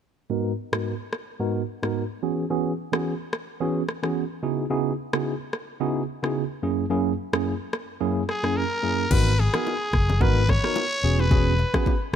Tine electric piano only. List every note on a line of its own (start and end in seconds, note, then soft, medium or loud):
0.30 0.51 G#2 medium
0.30 0.51 B3 medium
0.30 0.52 D#4 medium
0.30 0.52 F#4 medium
0.30 0.52 A#4 medium
0.72 0.92 G#2 medium
0.72 0.93 B3 medium
0.72 0.93 D#4 medium
0.72 0.93 F#4 medium
0.72 0.93 A#4 medium
1.40 1.61 G#2 medium
1.40 1.61 B3 medium
1.40 1.61 D#4 medium
1.40 1.61 F#4 medium
1.40 1.61 A#4 medium
1.82 2.03 G#2 medium
1.82 2.03 B3 medium
1.82 2.03 D#4 medium
1.82 2.03 F#4 medium
1.82 2.03 A#4 medium
2.22 2.44 E3 medium
2.22 2.44 B3 medium
2.22 2.44 C#4 medium
2.22 2.44 F#4 medium
2.22 2.44 G#4 medium
2.50 2.72 E3 medium
2.50 2.72 B3 medium
2.50 2.72 C#4 medium
2.50 2.72 F#4 medium
2.50 2.72 G#4 medium
2.92 3.13 E3 medium
2.92 3.13 B3 medium
2.92 3.13 C#4 medium
2.92 3.13 F#4 medium
2.92 3.13 G#4 medium
3.60 3.82 E3 medium
3.60 3.82 B3 medium
3.60 3.82 C#4 medium
3.60 3.82 F#4 medium
3.60 3.82 G#4 loud
4.03 4.23 E3 medium
4.03 4.23 B3 medium
4.03 4.23 C#4 medium
4.03 4.23 F#4 medium
4.03 4.23 G#4 medium
4.43 4.64 C#3 medium
4.43 4.64 B3 medium
4.43 4.64 D#4 medium
4.43 4.64 E4 medium
4.43 4.64 F#4 medium
4.43 4.64 G#4 medium
4.70 4.92 C#3 medium
4.70 4.92 B3 medium
4.70 4.92 D#4 medium
4.70 4.92 E4 medium
4.70 4.92 F#4 medium
4.70 4.92 G#4 loud
5.13 5.33 C#3 medium
5.13 5.33 B3 medium
5.13 5.33 D#4 medium
5.13 5.33 E4 medium
5.13 5.33 F#4 medium
5.13 5.33 G#4 medium
5.80 6.02 C#3 medium
5.80 6.02 B3 medium
5.80 6.02 D#4 medium
5.80 6.02 E4 medium
5.80 6.02 F#4 medium
5.80 6.02 G#4 medium
6.23 6.43 C#3 medium
6.23 6.43 B3 medium
6.23 6.43 D#4 medium
6.23 6.43 E4 medium
6.23 6.43 F#4 medium
6.23 6.43 G#4 medium
6.63 6.84 F#2 medium
6.63 6.84 A#3 medium
6.63 6.84 C#4 medium
6.63 6.84 E4 medium
6.63 6.85 G#4 medium
6.90 7.12 F#2 medium
6.90 7.12 A#3 medium
6.90 7.12 C#4 medium
6.90 7.12 E4 medium
6.90 7.12 G#4 medium
7.33 7.53 F#2 medium
7.33 7.53 A#3 medium
7.33 7.53 C#4 medium
7.33 7.53 E4 medium
7.33 7.53 G#4 medium
8.00 8.22 F#2 medium
8.00 8.22 A#3 medium
8.00 8.22 C#4 medium
8.00 8.22 E4 medium
8.00 8.22 G#4 loud
8.43 8.63 F#2 medium
8.43 8.63 A#3 medium
8.43 8.63 C#4 medium
8.43 8.63 E4 medium
8.43 8.63 G#4 medium
8.83 9.04 F#2 medium
8.83 9.04 A#3 medium
8.83 9.05 C#4 medium
8.83 9.05 E4 medium
8.83 9.05 G#4 medium
9.10 9.32 B3 medium
9.10 9.32 D#4 medium
9.10 9.32 F#4 medium
9.10 9.32 A#4 loud
9.53 9.73 B3 medium
9.53 9.73 D#4 medium
9.53 9.74 F#4 medium
9.53 9.74 A#4 medium
10.21 10.42 B3 medium
10.21 10.42 D#4 medium
10.21 10.42 F#4 medium
10.21 10.42 A#4 loud
10.63 10.83 B3 medium
10.63 10.84 D#4 medium
10.63 10.84 F#4 medium
10.63 10.84 A#4 medium
11.03 11.25 B3 medium
11.03 11.25 C#4 medium
11.03 11.25 F#4 medium
11.03 11.25 G#4 medium
11.31 11.52 B3 medium
11.31 11.52 C#4 medium
11.31 11.52 F#4 medium
11.31 11.53 G#4 loud
11.74 11.94 B3 medium
11.74 11.94 C#4 medium
11.74 11.94 F#4 medium
11.74 11.94 G#4 medium